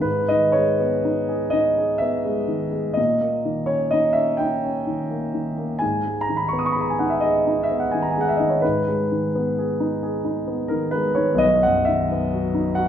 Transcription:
0.01 G#2 B4
0.28 D#3 D#5
0.52 G#3 C#5
0.80 B3
1.05 D#4
1.29 G#4
1.50 D#4 D#5
1.78 G#4
1.98 B3 E5
2.25 G#3
2.48 D#3
2.72 G#3
2.94 A#2 D#5
3.21 A#3
3.45 D#3
3.66 C#4 C#5
3.91 D#4 D#5
4.13 C#4 E5
4.37 D#4 G5
4.64 C#4
4.87 D#3
5.11 A#3
5.34 D#3
5.58 A#3
5.79 G#2 G#5
6.06 G#3
6.21 A#5
6.29 D#3
6.37 B5
6.49 C#6
6.53 B3
6.59 D#6
6.66 C#6
6.72 B5
6.76 G#4
6.81 A#5
6.90 G#5
6.99 D#4 F#5
7.10 E5
7.21 G#4 D#5
7.47 D#4
7.63 E5
7.71 B3
7.80 F#5
7.91 D#3 G#5
8.02 A#5
8.11 G#5
8.17 G#3 F#5
8.29 E5
8.37 D#3 D#5
8.49 C#5
8.62 G#2 B4
8.88 G#3
9.12 D#3
9.35 B3
9.59 G#4
9.80 D#4
10.03 G#4
10.25 D#4
10.47 B3
10.68 D#3 A#4
10.91 G#3 B4
11.15 D#3 C#5
11.34 B1 D#5
11.63 F#2 F#5
11.85 D#3 E5
12.12 B3
12.33 F#4
12.54 D#4
12.75 F#4 F#5

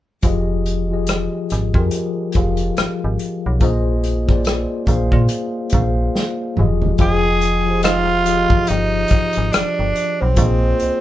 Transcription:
0.22 F1 F3 F4 G4 G#4, kick, closed hi-hat
0.27 D#5
0.66 closed hi-hat
0.90 F3 F4 G4 G#4 D#5
1.07 cross-stick, closed hi-hat
1.50 G#1, cross-stick, closed hi-hat
1.74 F2 F3 F4 G4 G#4, kick
1.78 A#4
1.91 closed hi-hat
2.32 F1 F3 F4 G4, kick, closed hi-hat
2.37 G#4 F5
2.57 closed hi-hat
2.77 G#1, cross-stick, closed hi-hat
3.04 G#1
3.19 closed hi-hat
3.46 B1
3.59 A#1 A#3 F4 G#4 C5, kick, closed hi-hat
3.64 D#5
4.04 closed hi-hat
4.27 A#3 F4 G#4 C5, kick, cross-stick
4.31 D5
4.45 cross-stick, closed hi-hat
4.86 A#1 A#3 F4 G#4 C5, kick, closed hi-hat
4.90 F5
5.12 A#2, kick
5.29 closed hi-hat
5.70 A#3 F4 G#4, kick, closed hi-hat
5.74 A#1 C5 F5
6.15 snare
6.56 F1 F3 F4 G4 G#4, mid tom
6.60 D#5
6.82 floor tom
6.98 F1 F3 F4 G#4 D#5 G5, kick, closed hi-hat
7.42 closed hi-hat
7.66 F3 F4 G4 G#4
7.70 C5
7.83 G#3 D#4 F4 G4, cross-stick, closed hi-hat
8.25 F3 F4 G4 G#4, closed hi-hat
8.29 D#5
8.50 kick
8.67 G1 D#4, closed hi-hat
9.08 kick, closed hi-hat
9.33 closed hi-hat
9.38 G#1
9.53 D4, cross-stick, closed hi-hat
9.79 G1
9.96 closed hi-hat
10.21 B1 C4
10.36 A#1 A#3 F4 G#4 C5, kick, closed hi-hat
10.40 D#5
10.80 C2, closed hi-hat

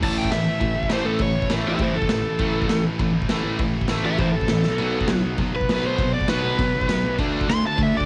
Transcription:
0.01 A1 A2 E3 A3 A5, kick, crash
0.18 G5
0.25 kick
0.31 A1 A2 E3 A3 E5, snare, crash
0.45 A1
0.61 A1 A2 E3 A3, kick, crash
0.76 A1
0.83 kick
0.89 A1 A2 E3 A3 C5, snare, crash
1.05 A1 A4
1.19 A1 A2 E3 A3 C#5, kick, crash
1.42 kick
1.49 A1 A2 E3 A3, snare, crash
1.66 A1 G4 E5
1.78 A1 A2 E3 A3 E4 C5, kick, crash
1.95 A1 A4
2.02 kick
2.09 A1 A2 E3 A3, snare, crash
2.23 A1
2.38 A1 A2 E3 A3, kick, crash
2.62 kick
2.68 A1 A2 E3 A3, snare, crash
2.84 A1
2.98 A1 A2 E3 A3, kick, crash
3.13 A1
3.22 kick
3.29 A1 A2 E3 A3, snare, crash
3.44 A1
3.59 A1 A2 E3 A3, kick, crash
3.81 kick
3.88 A1 A2 E3 A3, snare, crash
4.04 A1 G4 E5
4.18 A1 A2 E3 A3 E4 C5, kick, crash
4.32 A1 A4
4.41 kick
4.48 A1 A2 E3 A3, snare, crash
4.63 B1, snare
4.78 B1 B2 F#3 B3, crash
5.01 kick
5.08 B1 B2 F#3 B3, snare, crash
5.24 B1
5.38 B1 B2 F#3 B3, kick, crash
5.54 B1 B4
5.61 kick
5.67 B1 B2 F#3 B3, snare, crash
5.83 B1 C5
5.96 B1 B2 F#3 B3, kick, crash
6.00 B2
6.14 D5
6.21 kick
6.27 B1 B2 F#3 B3 B4, snare, crash
6.43 B1
6.58 B1 B2 F#3 B3, kick, crash
6.75 B1
6.81 kick
6.88 B1 B2 F#3 B3, snare, crash
7.04 B1
7.18 D2 D3 A3 D4, kick, crash
7.41 kick
7.49 D2 D3 A3 D4 C6, snare, crash
7.64 D2 A5
7.78 D2 D3 A3 D4, kick, crash
7.83 E5
7.94 D2 D5
8.01 kick

